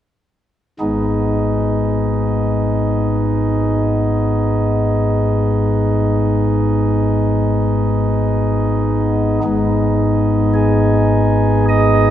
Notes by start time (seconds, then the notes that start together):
0.80 G#1 G#2 G#3 B3 D#4
9.43 G#1 G#2 G#3 B3 D#4
10.54 G#4
11.69 D#5